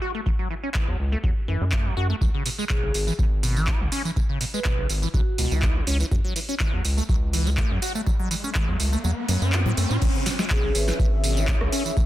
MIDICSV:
0, 0, Header, 1, 7, 480
1, 0, Start_track
1, 0, Key_signature, 4, "minor"
1, 0, Tempo, 487805
1, 257, Time_signature, 4, 2, 24, 8
1, 11866, End_track
2, 0, Start_track
2, 0, Title_t, "Ambient pad"
2, 0, Program_c, 0, 92
2, 9856, Note_on_c, 0, 61, 81
2, 10003, Note_on_c, 0, 73, 87
2, 10023, Note_on_c, 0, 68, 85
2, 10177, Note_on_c, 0, 76, 87
2, 11866, Note_off_c, 0, 61, 0
2, 11866, Note_off_c, 0, 68, 0
2, 11866, Note_off_c, 0, 73, 0
2, 11866, Note_off_c, 0, 76, 0
2, 11866, End_track
3, 0, Start_track
3, 0, Title_t, "Vibraphone"
3, 0, Program_c, 1, 11
3, 2655, Note_on_c, 1, 68, 85
3, 2737, Note_off_c, 1, 68, 0
3, 2783, Note_on_c, 1, 68, 74
3, 2856, Note_off_c, 1, 68, 0
3, 4464, Note_on_c, 1, 71, 86
3, 4536, Note_off_c, 1, 71, 0
3, 5056, Note_on_c, 1, 66, 87
3, 5424, Note_off_c, 1, 66, 0
3, 10336, Note_on_c, 1, 68, 86
3, 10418, Note_off_c, 1, 68, 0
3, 10463, Note_on_c, 1, 68, 78
3, 10535, Note_off_c, 1, 68, 0
3, 10576, Note_on_c, 1, 71, 89
3, 10658, Note_off_c, 1, 71, 0
3, 10703, Note_on_c, 1, 71, 76
3, 10775, Note_off_c, 1, 71, 0
3, 11866, End_track
4, 0, Start_track
4, 0, Title_t, "Acid bass"
4, 0, Program_c, 2, 38
4, 17, Note_on_c, 2, 66, 97
4, 122, Note_off_c, 2, 66, 0
4, 144, Note_on_c, 2, 57, 76
4, 206, Note_off_c, 2, 57, 0
4, 257, Note_on_c, 2, 54, 101
4, 299, Note_off_c, 2, 54, 0
4, 385, Note_on_c, 2, 54, 71
4, 477, Note_off_c, 2, 54, 0
4, 497, Note_on_c, 2, 52, 75
4, 539, Note_off_c, 2, 52, 0
4, 624, Note_on_c, 2, 61, 74
4, 686, Note_off_c, 2, 61, 0
4, 737, Note_on_c, 2, 52, 78
4, 864, Note_on_c, 2, 54, 73
4, 879, Note_off_c, 2, 52, 0
4, 957, Note_off_c, 2, 54, 0
4, 1105, Note_on_c, 2, 57, 76
4, 1166, Note_off_c, 2, 57, 0
4, 1217, Note_on_c, 2, 54, 80
4, 1287, Note_off_c, 2, 54, 0
4, 1457, Note_on_c, 2, 52, 74
4, 1585, Note_on_c, 2, 57, 103
4, 1599, Note_off_c, 2, 52, 0
4, 1621, Note_off_c, 2, 57, 0
4, 1697, Note_on_c, 2, 57, 78
4, 1824, Note_on_c, 2, 54, 72
4, 1839, Note_off_c, 2, 57, 0
4, 1917, Note_off_c, 2, 54, 0
4, 1937, Note_on_c, 2, 66, 102
4, 2042, Note_off_c, 2, 66, 0
4, 2064, Note_on_c, 2, 57, 73
4, 2126, Note_off_c, 2, 57, 0
4, 2176, Note_on_c, 2, 49, 97
4, 2218, Note_off_c, 2, 49, 0
4, 2304, Note_on_c, 2, 49, 75
4, 2397, Note_off_c, 2, 49, 0
4, 2416, Note_on_c, 2, 47, 74
4, 2459, Note_off_c, 2, 47, 0
4, 2544, Note_on_c, 2, 56, 74
4, 2606, Note_off_c, 2, 56, 0
4, 2656, Note_on_c, 2, 47, 78
4, 2783, Note_on_c, 2, 49, 77
4, 2798, Note_off_c, 2, 47, 0
4, 2876, Note_off_c, 2, 49, 0
4, 3023, Note_on_c, 2, 52, 76
4, 3085, Note_off_c, 2, 52, 0
4, 3135, Note_on_c, 2, 49, 79
4, 3206, Note_off_c, 2, 49, 0
4, 3376, Note_on_c, 2, 47, 75
4, 3504, Note_on_c, 2, 52, 101
4, 3519, Note_off_c, 2, 47, 0
4, 3616, Note_on_c, 2, 64, 82
4, 3631, Note_off_c, 2, 52, 0
4, 3743, Note_on_c, 2, 49, 75
4, 3758, Note_off_c, 2, 64, 0
4, 3836, Note_off_c, 2, 49, 0
4, 3856, Note_on_c, 2, 61, 101
4, 3961, Note_off_c, 2, 61, 0
4, 3984, Note_on_c, 2, 52, 76
4, 4046, Note_off_c, 2, 52, 0
4, 4097, Note_on_c, 2, 49, 101
4, 4139, Note_off_c, 2, 49, 0
4, 4224, Note_on_c, 2, 49, 71
4, 4317, Note_off_c, 2, 49, 0
4, 4337, Note_on_c, 2, 47, 74
4, 4379, Note_off_c, 2, 47, 0
4, 4465, Note_on_c, 2, 56, 74
4, 4526, Note_off_c, 2, 56, 0
4, 4577, Note_on_c, 2, 47, 78
4, 4705, Note_on_c, 2, 49, 76
4, 4719, Note_off_c, 2, 47, 0
4, 4797, Note_off_c, 2, 49, 0
4, 4944, Note_on_c, 2, 52, 75
4, 5006, Note_off_c, 2, 52, 0
4, 5057, Note_on_c, 2, 49, 82
4, 5127, Note_off_c, 2, 49, 0
4, 5296, Note_on_c, 2, 47, 74
4, 5423, Note_on_c, 2, 52, 101
4, 5438, Note_off_c, 2, 47, 0
4, 5537, Note_on_c, 2, 64, 82
4, 5552, Note_off_c, 2, 52, 0
4, 5665, Note_on_c, 2, 49, 77
4, 5679, Note_off_c, 2, 64, 0
4, 5757, Note_off_c, 2, 49, 0
4, 5777, Note_on_c, 2, 61, 96
4, 5882, Note_off_c, 2, 61, 0
4, 5904, Note_on_c, 2, 52, 75
4, 5966, Note_off_c, 2, 52, 0
4, 6016, Note_on_c, 2, 54, 101
4, 6058, Note_off_c, 2, 54, 0
4, 6144, Note_on_c, 2, 54, 75
4, 6237, Note_off_c, 2, 54, 0
4, 6256, Note_on_c, 2, 52, 73
4, 6298, Note_off_c, 2, 52, 0
4, 6384, Note_on_c, 2, 61, 77
4, 6446, Note_off_c, 2, 61, 0
4, 6496, Note_on_c, 2, 52, 81
4, 6623, Note_on_c, 2, 54, 74
4, 6637, Note_off_c, 2, 52, 0
4, 6716, Note_off_c, 2, 54, 0
4, 6863, Note_on_c, 2, 57, 74
4, 6925, Note_off_c, 2, 57, 0
4, 6976, Note_on_c, 2, 54, 82
4, 7046, Note_off_c, 2, 54, 0
4, 7216, Note_on_c, 2, 52, 75
4, 7343, Note_on_c, 2, 57, 101
4, 7358, Note_off_c, 2, 52, 0
4, 7381, Note_off_c, 2, 57, 0
4, 7456, Note_on_c, 2, 57, 78
4, 7583, Note_on_c, 2, 54, 75
4, 7598, Note_off_c, 2, 57, 0
4, 7676, Note_off_c, 2, 54, 0
4, 7696, Note_on_c, 2, 66, 101
4, 7801, Note_off_c, 2, 66, 0
4, 7824, Note_on_c, 2, 57, 75
4, 7886, Note_off_c, 2, 57, 0
4, 7936, Note_on_c, 2, 54, 100
4, 7978, Note_off_c, 2, 54, 0
4, 8064, Note_on_c, 2, 54, 72
4, 8157, Note_off_c, 2, 54, 0
4, 8176, Note_on_c, 2, 52, 76
4, 8218, Note_off_c, 2, 52, 0
4, 8304, Note_on_c, 2, 61, 77
4, 8366, Note_off_c, 2, 61, 0
4, 8416, Note_on_c, 2, 52, 79
4, 8544, Note_on_c, 2, 54, 76
4, 8559, Note_off_c, 2, 52, 0
4, 8637, Note_off_c, 2, 54, 0
4, 8784, Note_on_c, 2, 57, 76
4, 8846, Note_off_c, 2, 57, 0
4, 8896, Note_on_c, 2, 54, 80
4, 8966, Note_off_c, 2, 54, 0
4, 9137, Note_on_c, 2, 54, 77
4, 9264, Note_on_c, 2, 61, 77
4, 9279, Note_off_c, 2, 54, 0
4, 9376, Note_on_c, 2, 66, 99
4, 9391, Note_off_c, 2, 61, 0
4, 9446, Note_off_c, 2, 66, 0
4, 9504, Note_on_c, 2, 54, 104
4, 9566, Note_off_c, 2, 54, 0
4, 9617, Note_on_c, 2, 57, 78
4, 9744, Note_on_c, 2, 66, 77
4, 9759, Note_off_c, 2, 57, 0
4, 9806, Note_off_c, 2, 66, 0
4, 9856, Note_on_c, 2, 49, 104
4, 9898, Note_off_c, 2, 49, 0
4, 9984, Note_on_c, 2, 49, 75
4, 10077, Note_off_c, 2, 49, 0
4, 10096, Note_on_c, 2, 47, 75
4, 10138, Note_off_c, 2, 47, 0
4, 10223, Note_on_c, 2, 56, 78
4, 10286, Note_off_c, 2, 56, 0
4, 10336, Note_on_c, 2, 47, 80
4, 10464, Note_on_c, 2, 49, 76
4, 10479, Note_off_c, 2, 47, 0
4, 10557, Note_off_c, 2, 49, 0
4, 10703, Note_on_c, 2, 52, 78
4, 10765, Note_off_c, 2, 52, 0
4, 10817, Note_on_c, 2, 49, 85
4, 10887, Note_off_c, 2, 49, 0
4, 11056, Note_on_c, 2, 47, 77
4, 11184, Note_on_c, 2, 52, 103
4, 11199, Note_off_c, 2, 47, 0
4, 11297, Note_on_c, 2, 64, 81
4, 11312, Note_off_c, 2, 52, 0
4, 11424, Note_on_c, 2, 49, 78
4, 11439, Note_off_c, 2, 64, 0
4, 11517, Note_off_c, 2, 49, 0
4, 11537, Note_on_c, 2, 61, 102
4, 11642, Note_off_c, 2, 61, 0
4, 11664, Note_on_c, 2, 52, 77
4, 11726, Note_off_c, 2, 52, 0
4, 11776, Note_on_c, 2, 49, 98
4, 11818, Note_off_c, 2, 49, 0
4, 11866, End_track
5, 0, Start_track
5, 0, Title_t, "Analog synth bass"
5, 0, Program_c, 3, 38
5, 864, Note_on_c, 3, 40, 84
5, 938, Note_off_c, 3, 40, 0
5, 977, Note_on_c, 3, 37, 79
5, 1140, Note_off_c, 3, 37, 0
5, 1217, Note_on_c, 3, 40, 86
5, 1301, Note_off_c, 3, 40, 0
5, 1457, Note_on_c, 3, 42, 86
5, 1541, Note_off_c, 3, 42, 0
5, 1584, Note_on_c, 3, 42, 100
5, 1875, Note_off_c, 3, 42, 0
5, 1937, Note_on_c, 3, 42, 99
5, 2100, Note_off_c, 3, 42, 0
5, 2177, Note_on_c, 3, 37, 97
5, 2261, Note_off_c, 3, 37, 0
5, 2784, Note_on_c, 3, 35, 81
5, 2858, Note_off_c, 3, 35, 0
5, 2896, Note_on_c, 3, 32, 77
5, 3060, Note_off_c, 3, 32, 0
5, 3137, Note_on_c, 3, 32, 100
5, 3675, Note_off_c, 3, 32, 0
5, 3744, Note_on_c, 3, 37, 87
5, 3818, Note_off_c, 3, 37, 0
5, 4704, Note_on_c, 3, 35, 83
5, 4778, Note_off_c, 3, 35, 0
5, 4817, Note_on_c, 3, 32, 79
5, 4980, Note_off_c, 3, 32, 0
5, 5056, Note_on_c, 3, 35, 86
5, 5141, Note_off_c, 3, 35, 0
5, 5297, Note_on_c, 3, 37, 86
5, 5381, Note_off_c, 3, 37, 0
5, 5424, Note_on_c, 3, 37, 100
5, 5715, Note_off_c, 3, 37, 0
5, 5777, Note_on_c, 3, 37, 101
5, 5940, Note_off_c, 3, 37, 0
5, 6017, Note_on_c, 3, 42, 96
5, 6101, Note_off_c, 3, 42, 0
5, 6624, Note_on_c, 3, 40, 83
5, 6698, Note_off_c, 3, 40, 0
5, 6737, Note_on_c, 3, 37, 77
5, 6900, Note_off_c, 3, 37, 0
5, 6976, Note_on_c, 3, 37, 100
5, 7514, Note_off_c, 3, 37, 0
5, 7583, Note_on_c, 3, 42, 87
5, 7658, Note_off_c, 3, 42, 0
5, 8543, Note_on_c, 3, 40, 84
5, 8618, Note_off_c, 3, 40, 0
5, 8656, Note_on_c, 3, 37, 80
5, 8819, Note_off_c, 3, 37, 0
5, 8896, Note_on_c, 3, 40, 88
5, 8980, Note_off_c, 3, 40, 0
5, 9136, Note_on_c, 3, 42, 90
5, 9220, Note_off_c, 3, 42, 0
5, 9264, Note_on_c, 3, 42, 96
5, 9498, Note_off_c, 3, 42, 0
5, 9504, Note_on_c, 3, 45, 88
5, 9578, Note_off_c, 3, 45, 0
5, 9617, Note_on_c, 3, 42, 89
5, 9701, Note_off_c, 3, 42, 0
5, 9744, Note_on_c, 3, 45, 81
5, 9818, Note_off_c, 3, 45, 0
5, 9857, Note_on_c, 3, 37, 99
5, 9940, Note_off_c, 3, 37, 0
5, 10465, Note_on_c, 3, 35, 86
5, 10538, Note_off_c, 3, 35, 0
5, 10577, Note_on_c, 3, 32, 79
5, 10740, Note_off_c, 3, 32, 0
5, 10817, Note_on_c, 3, 32, 104
5, 11354, Note_off_c, 3, 32, 0
5, 11424, Note_on_c, 3, 37, 90
5, 11498, Note_off_c, 3, 37, 0
5, 11866, End_track
6, 0, Start_track
6, 0, Title_t, "Riser"
6, 0, Program_c, 4, 103
6, 6016, Note_on_c, 4, 60, 73
6, 9856, Note_off_c, 4, 60, 0
6, 11866, End_track
7, 0, Start_track
7, 0, Title_t, "Drums"
7, 256, Note_on_c, 9, 36, 113
7, 355, Note_off_c, 9, 36, 0
7, 732, Note_on_c, 9, 39, 112
7, 736, Note_on_c, 9, 36, 121
7, 830, Note_off_c, 9, 39, 0
7, 835, Note_off_c, 9, 36, 0
7, 1216, Note_on_c, 9, 36, 117
7, 1315, Note_off_c, 9, 36, 0
7, 1692, Note_on_c, 9, 39, 110
7, 1696, Note_on_c, 9, 36, 114
7, 1790, Note_off_c, 9, 39, 0
7, 1795, Note_off_c, 9, 36, 0
7, 2176, Note_on_c, 9, 36, 110
7, 2180, Note_on_c, 9, 54, 32
7, 2275, Note_off_c, 9, 36, 0
7, 2278, Note_off_c, 9, 54, 0
7, 2417, Note_on_c, 9, 46, 103
7, 2420, Note_on_c, 9, 54, 72
7, 2515, Note_off_c, 9, 46, 0
7, 2518, Note_off_c, 9, 54, 0
7, 2547, Note_on_c, 9, 54, 39
7, 2646, Note_off_c, 9, 54, 0
7, 2652, Note_on_c, 9, 39, 107
7, 2657, Note_on_c, 9, 36, 119
7, 2660, Note_on_c, 9, 54, 30
7, 2751, Note_off_c, 9, 39, 0
7, 2755, Note_off_c, 9, 36, 0
7, 2759, Note_off_c, 9, 54, 0
7, 2897, Note_on_c, 9, 46, 97
7, 2900, Note_on_c, 9, 54, 72
7, 2995, Note_off_c, 9, 46, 0
7, 2998, Note_off_c, 9, 54, 0
7, 3027, Note_on_c, 9, 54, 41
7, 3126, Note_off_c, 9, 54, 0
7, 3137, Note_on_c, 9, 36, 114
7, 3140, Note_on_c, 9, 54, 31
7, 3235, Note_off_c, 9, 36, 0
7, 3238, Note_off_c, 9, 54, 0
7, 3377, Note_on_c, 9, 46, 99
7, 3380, Note_on_c, 9, 54, 71
7, 3475, Note_off_c, 9, 46, 0
7, 3478, Note_off_c, 9, 54, 0
7, 3507, Note_on_c, 9, 54, 40
7, 3606, Note_off_c, 9, 54, 0
7, 3613, Note_on_c, 9, 39, 109
7, 3617, Note_on_c, 9, 36, 113
7, 3620, Note_on_c, 9, 54, 31
7, 3711, Note_off_c, 9, 39, 0
7, 3715, Note_off_c, 9, 36, 0
7, 3719, Note_off_c, 9, 54, 0
7, 3857, Note_on_c, 9, 46, 99
7, 3860, Note_on_c, 9, 54, 72
7, 3955, Note_off_c, 9, 46, 0
7, 3958, Note_off_c, 9, 54, 0
7, 3988, Note_on_c, 9, 54, 39
7, 4086, Note_off_c, 9, 54, 0
7, 4096, Note_on_c, 9, 36, 108
7, 4100, Note_on_c, 9, 54, 32
7, 4195, Note_off_c, 9, 36, 0
7, 4199, Note_off_c, 9, 54, 0
7, 4337, Note_on_c, 9, 46, 99
7, 4340, Note_on_c, 9, 54, 75
7, 4435, Note_off_c, 9, 46, 0
7, 4439, Note_off_c, 9, 54, 0
7, 4468, Note_on_c, 9, 54, 42
7, 4566, Note_off_c, 9, 54, 0
7, 4573, Note_on_c, 9, 39, 110
7, 4577, Note_on_c, 9, 36, 114
7, 4580, Note_on_c, 9, 54, 33
7, 4671, Note_off_c, 9, 39, 0
7, 4675, Note_off_c, 9, 36, 0
7, 4679, Note_off_c, 9, 54, 0
7, 4817, Note_on_c, 9, 46, 97
7, 4820, Note_on_c, 9, 54, 74
7, 4915, Note_off_c, 9, 46, 0
7, 4919, Note_off_c, 9, 54, 0
7, 4948, Note_on_c, 9, 54, 43
7, 5046, Note_off_c, 9, 54, 0
7, 5057, Note_on_c, 9, 36, 110
7, 5060, Note_on_c, 9, 54, 32
7, 5155, Note_off_c, 9, 36, 0
7, 5159, Note_off_c, 9, 54, 0
7, 5297, Note_on_c, 9, 46, 96
7, 5300, Note_on_c, 9, 54, 73
7, 5395, Note_off_c, 9, 46, 0
7, 5398, Note_off_c, 9, 54, 0
7, 5427, Note_on_c, 9, 54, 43
7, 5526, Note_off_c, 9, 54, 0
7, 5532, Note_on_c, 9, 39, 108
7, 5537, Note_on_c, 9, 36, 110
7, 5540, Note_on_c, 9, 54, 32
7, 5631, Note_off_c, 9, 39, 0
7, 5635, Note_off_c, 9, 36, 0
7, 5638, Note_off_c, 9, 54, 0
7, 5777, Note_on_c, 9, 46, 94
7, 5780, Note_on_c, 9, 54, 76
7, 5875, Note_off_c, 9, 46, 0
7, 5879, Note_off_c, 9, 54, 0
7, 5908, Note_on_c, 9, 54, 42
7, 6006, Note_off_c, 9, 54, 0
7, 6017, Note_on_c, 9, 36, 107
7, 6020, Note_on_c, 9, 54, 33
7, 6115, Note_off_c, 9, 36, 0
7, 6118, Note_off_c, 9, 54, 0
7, 6257, Note_on_c, 9, 46, 99
7, 6260, Note_on_c, 9, 54, 78
7, 6355, Note_off_c, 9, 46, 0
7, 6359, Note_off_c, 9, 54, 0
7, 6388, Note_on_c, 9, 54, 43
7, 6486, Note_off_c, 9, 54, 0
7, 6493, Note_on_c, 9, 39, 112
7, 6496, Note_on_c, 9, 36, 110
7, 6500, Note_on_c, 9, 54, 33
7, 6591, Note_off_c, 9, 39, 0
7, 6595, Note_off_c, 9, 36, 0
7, 6599, Note_off_c, 9, 54, 0
7, 6737, Note_on_c, 9, 46, 95
7, 6740, Note_on_c, 9, 54, 78
7, 6835, Note_off_c, 9, 46, 0
7, 6839, Note_off_c, 9, 54, 0
7, 6868, Note_on_c, 9, 54, 45
7, 6966, Note_off_c, 9, 54, 0
7, 6976, Note_on_c, 9, 36, 108
7, 6980, Note_on_c, 9, 54, 35
7, 7075, Note_off_c, 9, 36, 0
7, 7079, Note_off_c, 9, 54, 0
7, 7217, Note_on_c, 9, 46, 98
7, 7220, Note_on_c, 9, 54, 80
7, 7315, Note_off_c, 9, 46, 0
7, 7318, Note_off_c, 9, 54, 0
7, 7347, Note_on_c, 9, 54, 45
7, 7446, Note_off_c, 9, 54, 0
7, 7452, Note_on_c, 9, 39, 112
7, 7456, Note_on_c, 9, 36, 109
7, 7460, Note_on_c, 9, 54, 33
7, 7551, Note_off_c, 9, 39, 0
7, 7555, Note_off_c, 9, 36, 0
7, 7559, Note_off_c, 9, 54, 0
7, 7696, Note_on_c, 9, 46, 96
7, 7700, Note_on_c, 9, 54, 79
7, 7795, Note_off_c, 9, 46, 0
7, 7798, Note_off_c, 9, 54, 0
7, 7827, Note_on_c, 9, 54, 42
7, 7925, Note_off_c, 9, 54, 0
7, 7936, Note_on_c, 9, 36, 107
7, 7940, Note_on_c, 9, 54, 36
7, 8035, Note_off_c, 9, 36, 0
7, 8038, Note_off_c, 9, 54, 0
7, 8176, Note_on_c, 9, 46, 102
7, 8180, Note_on_c, 9, 54, 84
7, 8275, Note_off_c, 9, 46, 0
7, 8278, Note_off_c, 9, 54, 0
7, 8307, Note_on_c, 9, 54, 46
7, 8405, Note_off_c, 9, 54, 0
7, 8412, Note_on_c, 9, 39, 116
7, 8416, Note_on_c, 9, 36, 115
7, 8420, Note_on_c, 9, 54, 35
7, 8511, Note_off_c, 9, 39, 0
7, 8515, Note_off_c, 9, 36, 0
7, 8518, Note_off_c, 9, 54, 0
7, 8656, Note_on_c, 9, 46, 103
7, 8660, Note_on_c, 9, 54, 78
7, 8755, Note_off_c, 9, 46, 0
7, 8758, Note_off_c, 9, 54, 0
7, 8787, Note_on_c, 9, 54, 46
7, 8886, Note_off_c, 9, 54, 0
7, 8900, Note_on_c, 9, 54, 36
7, 8998, Note_off_c, 9, 54, 0
7, 9137, Note_on_c, 9, 46, 98
7, 9140, Note_on_c, 9, 54, 81
7, 9235, Note_off_c, 9, 46, 0
7, 9238, Note_off_c, 9, 54, 0
7, 9268, Note_on_c, 9, 54, 46
7, 9366, Note_off_c, 9, 54, 0
7, 9373, Note_on_c, 9, 39, 120
7, 9380, Note_on_c, 9, 54, 35
7, 9471, Note_off_c, 9, 39, 0
7, 9479, Note_off_c, 9, 54, 0
7, 9617, Note_on_c, 9, 46, 101
7, 9620, Note_on_c, 9, 54, 76
7, 9715, Note_off_c, 9, 46, 0
7, 9719, Note_off_c, 9, 54, 0
7, 9748, Note_on_c, 9, 54, 45
7, 9846, Note_off_c, 9, 54, 0
7, 9857, Note_on_c, 9, 36, 116
7, 9857, Note_on_c, 9, 49, 106
7, 9860, Note_on_c, 9, 54, 36
7, 9955, Note_off_c, 9, 36, 0
7, 9955, Note_off_c, 9, 49, 0
7, 9959, Note_off_c, 9, 54, 0
7, 10097, Note_on_c, 9, 38, 60
7, 10097, Note_on_c, 9, 46, 106
7, 10100, Note_on_c, 9, 54, 85
7, 10195, Note_off_c, 9, 38, 0
7, 10195, Note_off_c, 9, 46, 0
7, 10199, Note_off_c, 9, 54, 0
7, 10224, Note_on_c, 9, 38, 59
7, 10227, Note_on_c, 9, 54, 46
7, 10323, Note_off_c, 9, 38, 0
7, 10326, Note_off_c, 9, 54, 0
7, 10333, Note_on_c, 9, 39, 124
7, 10337, Note_on_c, 9, 36, 121
7, 10340, Note_on_c, 9, 54, 36
7, 10431, Note_off_c, 9, 39, 0
7, 10435, Note_off_c, 9, 36, 0
7, 10439, Note_off_c, 9, 54, 0
7, 10577, Note_on_c, 9, 46, 102
7, 10580, Note_on_c, 9, 54, 84
7, 10675, Note_off_c, 9, 46, 0
7, 10678, Note_off_c, 9, 54, 0
7, 10704, Note_on_c, 9, 38, 35
7, 10707, Note_on_c, 9, 54, 47
7, 10803, Note_off_c, 9, 38, 0
7, 10806, Note_off_c, 9, 54, 0
7, 10816, Note_on_c, 9, 36, 120
7, 10820, Note_on_c, 9, 54, 37
7, 10915, Note_off_c, 9, 36, 0
7, 10919, Note_off_c, 9, 54, 0
7, 11057, Note_on_c, 9, 46, 104
7, 11060, Note_on_c, 9, 54, 82
7, 11155, Note_off_c, 9, 46, 0
7, 11158, Note_off_c, 9, 54, 0
7, 11188, Note_on_c, 9, 54, 47
7, 11286, Note_off_c, 9, 54, 0
7, 11293, Note_on_c, 9, 39, 126
7, 11296, Note_on_c, 9, 36, 122
7, 11300, Note_on_c, 9, 54, 35
7, 11391, Note_off_c, 9, 39, 0
7, 11395, Note_off_c, 9, 36, 0
7, 11399, Note_off_c, 9, 54, 0
7, 11425, Note_on_c, 9, 37, 79
7, 11523, Note_off_c, 9, 37, 0
7, 11537, Note_on_c, 9, 46, 104
7, 11540, Note_on_c, 9, 54, 82
7, 11635, Note_off_c, 9, 46, 0
7, 11639, Note_off_c, 9, 54, 0
7, 11668, Note_on_c, 9, 54, 46
7, 11766, Note_off_c, 9, 54, 0
7, 11776, Note_on_c, 9, 36, 118
7, 11780, Note_on_c, 9, 54, 35
7, 11866, Note_off_c, 9, 36, 0
7, 11866, Note_off_c, 9, 54, 0
7, 11866, End_track
0, 0, End_of_file